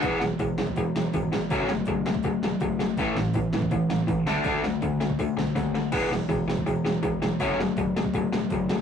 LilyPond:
<<
  \new Staff \with { instrumentName = "Overdriven electric guitar" } { \clef bass \time 4/4 \key e \mixolydian \tempo 4 = 163 <e gis b>8 <e gis>8 <e gis>8 <e gis>8 <e gis>8 <e gis>8 <e gis>8 <e gis>8 | <fis a cis'>8 <fis a>8 <fis a>8 <fis a>8 <fis a>8 <fis a>8 <fis a>8 <fis a>8 | <a, e a>8 <a, e>8 <a, e>8 <a, e>8 <a, e>8 <a, e>8 <a, e>8 <d a d'>8 | <d a d'>8 <d a>8 <d a>8 <d a>8 <d a>8 <d a>8 <d a>8 <d a>8 |
<e gis b>8 <e gis>8 <e gis>8 <e gis>8 <e gis>8 <e gis>8 <e gis>8 <e gis>8 | <fis a cis'>8 <fis a>8 <fis a>8 <fis a>8 <fis a>8 <fis a>8 <fis a>8 <fis a>8 | }
  \new Staff \with { instrumentName = "Picked electric bass" } { \clef bass \time 4/4 \key e \mixolydian e,,8 e,,8 e,,8 e,,8 e,,8 e,,8 gis,,4 | fis,,8 fis,,8 fis,,4 fis,,8 e,,8 fis,,4 | a,,8 a,,8 a,,8 a,,8 a,,8 a,,8 a,,8 d,8 | d,8 d,8 d,4 d,8 b,,8 dis,4 |
e,,8 e,,8 e,,8 e,,8 e,,8 e,,8 e,,4 | fis,,8 fis,,8 fis,,4 fis,,8 e,,8 fis,,4 | }
  \new DrumStaff \with { instrumentName = "Drums" } \drummode { \time 4/4 <hho bd>8 sn8 <hho bd>8 sn16 bd16 <hho bd>8 sn8 <hho bd>8 sn8 | <hho bd>8 sn8 <hho bd>8 sn16 bd16 <hho bd>8 sn8 <hho bd>8 sn8 | <hho bd>8 sn8 <hho bd>8 sn16 bd16 <hho bd>8 sn8 <hho bd>8 sn8 | <hho bd>8 sn8 <hho bd>8 sn16 bd16 <hho bd>8 sn8 <hho bd sn>8 sn8 |
<cymc hho bd>8 sn8 <hho bd>8 sn16 bd16 <hho bd>8 sn8 <hho bd>8 sn8 | <hho bd>8 sn8 <hho bd>8 sn16 bd16 <hho bd>8 sn8 <hho bd>8 sn8 | }
>>